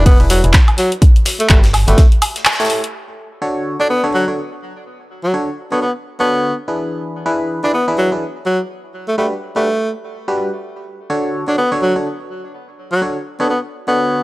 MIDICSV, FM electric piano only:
0, 0, Header, 1, 2, 480
1, 0, Start_track
1, 0, Key_signature, 2, "major"
1, 0, Tempo, 480000
1, 1019, Time_signature, 4, 2, 24, 8
1, 14232, End_track
2, 0, Start_track
2, 0, Title_t, "FM electric piano"
2, 0, Program_c, 0, 5
2, 198, Note_on_c, 0, 64, 88
2, 198, Note_on_c, 0, 68, 86
2, 198, Note_on_c, 0, 71, 108
2, 199, Note_on_c, 0, 52, 99
2, 199, Note_on_c, 0, 62, 90
2, 405, Note_off_c, 0, 52, 0
2, 405, Note_off_c, 0, 62, 0
2, 405, Note_off_c, 0, 64, 0
2, 405, Note_off_c, 0, 68, 0
2, 405, Note_off_c, 0, 71, 0
2, 438, Note_on_c, 0, 52, 78
2, 438, Note_on_c, 0, 62, 68
2, 438, Note_on_c, 0, 64, 71
2, 439, Note_on_c, 0, 68, 70
2, 439, Note_on_c, 0, 71, 84
2, 558, Note_off_c, 0, 62, 0
2, 559, Note_off_c, 0, 52, 0
2, 559, Note_off_c, 0, 64, 0
2, 559, Note_off_c, 0, 68, 0
2, 559, Note_off_c, 0, 71, 0
2, 1497, Note_on_c, 0, 66, 79
2, 1497, Note_on_c, 0, 71, 101
2, 1498, Note_on_c, 0, 55, 89
2, 1498, Note_on_c, 0, 62, 82
2, 1498, Note_on_c, 0, 67, 81
2, 1652, Note_off_c, 0, 66, 0
2, 1653, Note_off_c, 0, 55, 0
2, 1653, Note_off_c, 0, 62, 0
2, 1653, Note_off_c, 0, 67, 0
2, 1653, Note_off_c, 0, 71, 0
2, 1877, Note_on_c, 0, 66, 86
2, 1878, Note_on_c, 0, 62, 92
2, 1878, Note_on_c, 0, 67, 86
2, 1878, Note_on_c, 0, 71, 100
2, 1966, Note_off_c, 0, 62, 0
2, 1966, Note_off_c, 0, 66, 0
2, 1966, Note_off_c, 0, 67, 0
2, 1966, Note_off_c, 0, 71, 0
2, 2598, Note_on_c, 0, 57, 93
2, 2598, Note_on_c, 0, 64, 82
2, 2598, Note_on_c, 0, 67, 84
2, 2598, Note_on_c, 0, 69, 83
2, 2598, Note_on_c, 0, 73, 102
2, 2814, Note_off_c, 0, 57, 0
2, 2814, Note_off_c, 0, 64, 0
2, 2814, Note_off_c, 0, 67, 0
2, 2814, Note_off_c, 0, 69, 0
2, 2814, Note_off_c, 0, 73, 0
2, 3417, Note_on_c, 0, 50, 89
2, 3417, Note_on_c, 0, 62, 83
2, 3417, Note_on_c, 0, 66, 84
2, 3417, Note_on_c, 0, 73, 100
2, 3418, Note_on_c, 0, 69, 83
2, 3765, Note_off_c, 0, 50, 0
2, 3765, Note_off_c, 0, 62, 0
2, 3765, Note_off_c, 0, 66, 0
2, 3765, Note_off_c, 0, 69, 0
2, 3765, Note_off_c, 0, 73, 0
2, 3797, Note_on_c, 0, 50, 82
2, 3797, Note_on_c, 0, 62, 75
2, 3797, Note_on_c, 0, 66, 73
2, 3797, Note_on_c, 0, 69, 73
2, 3798, Note_on_c, 0, 73, 89
2, 3918, Note_off_c, 0, 50, 0
2, 3918, Note_off_c, 0, 62, 0
2, 3918, Note_off_c, 0, 66, 0
2, 3918, Note_off_c, 0, 69, 0
2, 3918, Note_off_c, 0, 73, 0
2, 4036, Note_on_c, 0, 73, 97
2, 4037, Note_on_c, 0, 50, 89
2, 4037, Note_on_c, 0, 62, 83
2, 4037, Note_on_c, 0, 66, 87
2, 4037, Note_on_c, 0, 69, 84
2, 4244, Note_off_c, 0, 50, 0
2, 4244, Note_off_c, 0, 62, 0
2, 4244, Note_off_c, 0, 66, 0
2, 4244, Note_off_c, 0, 73, 0
2, 4245, Note_off_c, 0, 69, 0
2, 4278, Note_on_c, 0, 50, 73
2, 4278, Note_on_c, 0, 66, 67
2, 4278, Note_on_c, 0, 69, 63
2, 4278, Note_on_c, 0, 73, 80
2, 4279, Note_on_c, 0, 62, 64
2, 4398, Note_off_c, 0, 50, 0
2, 4398, Note_off_c, 0, 66, 0
2, 4398, Note_off_c, 0, 69, 0
2, 4398, Note_off_c, 0, 73, 0
2, 4399, Note_off_c, 0, 62, 0
2, 5337, Note_on_c, 0, 50, 84
2, 5337, Note_on_c, 0, 66, 75
2, 5338, Note_on_c, 0, 62, 75
2, 5338, Note_on_c, 0, 69, 75
2, 5338, Note_on_c, 0, 73, 91
2, 5492, Note_off_c, 0, 50, 0
2, 5493, Note_off_c, 0, 62, 0
2, 5493, Note_off_c, 0, 66, 0
2, 5493, Note_off_c, 0, 69, 0
2, 5493, Note_off_c, 0, 73, 0
2, 5718, Note_on_c, 0, 50, 86
2, 5719, Note_on_c, 0, 62, 78
2, 5719, Note_on_c, 0, 66, 76
2, 5719, Note_on_c, 0, 69, 78
2, 5719, Note_on_c, 0, 73, 93
2, 5838, Note_off_c, 0, 50, 0
2, 5839, Note_off_c, 0, 62, 0
2, 5839, Note_off_c, 0, 66, 0
2, 5839, Note_off_c, 0, 69, 0
2, 5839, Note_off_c, 0, 73, 0
2, 6198, Note_on_c, 0, 50, 81
2, 6198, Note_on_c, 0, 62, 71
2, 6198, Note_on_c, 0, 66, 75
2, 6198, Note_on_c, 0, 69, 73
2, 6198, Note_on_c, 0, 73, 89
2, 6527, Note_off_c, 0, 50, 0
2, 6527, Note_off_c, 0, 62, 0
2, 6527, Note_off_c, 0, 66, 0
2, 6527, Note_off_c, 0, 69, 0
2, 6527, Note_off_c, 0, 73, 0
2, 6678, Note_on_c, 0, 71, 78
2, 6679, Note_on_c, 0, 52, 74
2, 6679, Note_on_c, 0, 62, 66
2, 6679, Note_on_c, 0, 64, 65
2, 6679, Note_on_c, 0, 68, 65
2, 7235, Note_off_c, 0, 52, 0
2, 7235, Note_off_c, 0, 62, 0
2, 7235, Note_off_c, 0, 64, 0
2, 7235, Note_off_c, 0, 68, 0
2, 7235, Note_off_c, 0, 71, 0
2, 7257, Note_on_c, 0, 52, 89
2, 7257, Note_on_c, 0, 68, 86
2, 7258, Note_on_c, 0, 62, 81
2, 7258, Note_on_c, 0, 64, 84
2, 7258, Note_on_c, 0, 71, 100
2, 7605, Note_off_c, 0, 52, 0
2, 7605, Note_off_c, 0, 62, 0
2, 7605, Note_off_c, 0, 64, 0
2, 7605, Note_off_c, 0, 68, 0
2, 7605, Note_off_c, 0, 71, 0
2, 7638, Note_on_c, 0, 52, 83
2, 7638, Note_on_c, 0, 64, 76
2, 7638, Note_on_c, 0, 68, 76
2, 7638, Note_on_c, 0, 71, 91
2, 7639, Note_on_c, 0, 62, 74
2, 7758, Note_off_c, 0, 64, 0
2, 7758, Note_off_c, 0, 68, 0
2, 7758, Note_off_c, 0, 71, 0
2, 7759, Note_off_c, 0, 52, 0
2, 7759, Note_off_c, 0, 62, 0
2, 7878, Note_on_c, 0, 62, 82
2, 7878, Note_on_c, 0, 64, 85
2, 7878, Note_on_c, 0, 71, 100
2, 7879, Note_on_c, 0, 52, 95
2, 7879, Note_on_c, 0, 68, 82
2, 8085, Note_off_c, 0, 52, 0
2, 8085, Note_off_c, 0, 62, 0
2, 8085, Note_off_c, 0, 64, 0
2, 8085, Note_off_c, 0, 68, 0
2, 8085, Note_off_c, 0, 71, 0
2, 8118, Note_on_c, 0, 52, 68
2, 8118, Note_on_c, 0, 62, 65
2, 8118, Note_on_c, 0, 68, 66
2, 8119, Note_on_c, 0, 64, 62
2, 8119, Note_on_c, 0, 71, 78
2, 8238, Note_off_c, 0, 68, 0
2, 8239, Note_off_c, 0, 52, 0
2, 8239, Note_off_c, 0, 62, 0
2, 8239, Note_off_c, 0, 64, 0
2, 8239, Note_off_c, 0, 71, 0
2, 9179, Note_on_c, 0, 55, 83
2, 9179, Note_on_c, 0, 62, 76
2, 9179, Note_on_c, 0, 67, 76
2, 9179, Note_on_c, 0, 71, 94
2, 9180, Note_on_c, 0, 66, 75
2, 9333, Note_off_c, 0, 67, 0
2, 9333, Note_off_c, 0, 71, 0
2, 9334, Note_off_c, 0, 55, 0
2, 9334, Note_off_c, 0, 62, 0
2, 9334, Note_off_c, 0, 66, 0
2, 9558, Note_on_c, 0, 71, 94
2, 9559, Note_on_c, 0, 55, 88
2, 9559, Note_on_c, 0, 62, 80
2, 9559, Note_on_c, 0, 66, 80
2, 9559, Note_on_c, 0, 67, 77
2, 9679, Note_off_c, 0, 55, 0
2, 9679, Note_off_c, 0, 62, 0
2, 9679, Note_off_c, 0, 66, 0
2, 9679, Note_off_c, 0, 67, 0
2, 9679, Note_off_c, 0, 71, 0
2, 10279, Note_on_c, 0, 62, 77
2, 10280, Note_on_c, 0, 55, 88
2, 10280, Note_on_c, 0, 66, 76
2, 10280, Note_on_c, 0, 67, 81
2, 10280, Note_on_c, 0, 71, 95
2, 10495, Note_off_c, 0, 55, 0
2, 10495, Note_off_c, 0, 62, 0
2, 10495, Note_off_c, 0, 66, 0
2, 10495, Note_off_c, 0, 67, 0
2, 10495, Note_off_c, 0, 71, 0
2, 11098, Note_on_c, 0, 50, 94
2, 11098, Note_on_c, 0, 62, 86
2, 11098, Note_on_c, 0, 66, 86
2, 11099, Note_on_c, 0, 69, 86
2, 11099, Note_on_c, 0, 73, 100
2, 11445, Note_off_c, 0, 50, 0
2, 11445, Note_off_c, 0, 62, 0
2, 11445, Note_off_c, 0, 66, 0
2, 11445, Note_off_c, 0, 69, 0
2, 11445, Note_off_c, 0, 73, 0
2, 11478, Note_on_c, 0, 50, 80
2, 11478, Note_on_c, 0, 62, 77
2, 11478, Note_on_c, 0, 66, 71
2, 11478, Note_on_c, 0, 69, 74
2, 11478, Note_on_c, 0, 73, 88
2, 11598, Note_off_c, 0, 50, 0
2, 11598, Note_off_c, 0, 62, 0
2, 11598, Note_off_c, 0, 73, 0
2, 11599, Note_off_c, 0, 66, 0
2, 11599, Note_off_c, 0, 69, 0
2, 11718, Note_on_c, 0, 50, 93
2, 11718, Note_on_c, 0, 62, 83
2, 11718, Note_on_c, 0, 66, 85
2, 11718, Note_on_c, 0, 69, 83
2, 11718, Note_on_c, 0, 73, 102
2, 11925, Note_off_c, 0, 50, 0
2, 11925, Note_off_c, 0, 62, 0
2, 11925, Note_off_c, 0, 66, 0
2, 11925, Note_off_c, 0, 69, 0
2, 11925, Note_off_c, 0, 73, 0
2, 11958, Note_on_c, 0, 50, 70
2, 11958, Note_on_c, 0, 62, 64
2, 11958, Note_on_c, 0, 66, 66
2, 11958, Note_on_c, 0, 69, 63
2, 11958, Note_on_c, 0, 73, 75
2, 12078, Note_off_c, 0, 50, 0
2, 12078, Note_off_c, 0, 62, 0
2, 12078, Note_off_c, 0, 66, 0
2, 12078, Note_off_c, 0, 69, 0
2, 12078, Note_off_c, 0, 73, 0
2, 13017, Note_on_c, 0, 50, 82
2, 13017, Note_on_c, 0, 69, 75
2, 13018, Note_on_c, 0, 62, 76
2, 13018, Note_on_c, 0, 66, 76
2, 13018, Note_on_c, 0, 73, 92
2, 13173, Note_off_c, 0, 50, 0
2, 13173, Note_off_c, 0, 62, 0
2, 13173, Note_off_c, 0, 66, 0
2, 13173, Note_off_c, 0, 69, 0
2, 13173, Note_off_c, 0, 73, 0
2, 13398, Note_on_c, 0, 50, 91
2, 13398, Note_on_c, 0, 62, 81
2, 13398, Note_on_c, 0, 66, 78
2, 13398, Note_on_c, 0, 69, 80
2, 13398, Note_on_c, 0, 73, 95
2, 13518, Note_off_c, 0, 62, 0
2, 13518, Note_off_c, 0, 66, 0
2, 13518, Note_off_c, 0, 69, 0
2, 13518, Note_off_c, 0, 73, 0
2, 13519, Note_off_c, 0, 50, 0
2, 13877, Note_on_c, 0, 69, 74
2, 13878, Note_on_c, 0, 50, 76
2, 13878, Note_on_c, 0, 62, 75
2, 13878, Note_on_c, 0, 66, 71
2, 13878, Note_on_c, 0, 73, 86
2, 14206, Note_off_c, 0, 50, 0
2, 14206, Note_off_c, 0, 62, 0
2, 14206, Note_off_c, 0, 66, 0
2, 14206, Note_off_c, 0, 69, 0
2, 14206, Note_off_c, 0, 73, 0
2, 14232, End_track
0, 0, End_of_file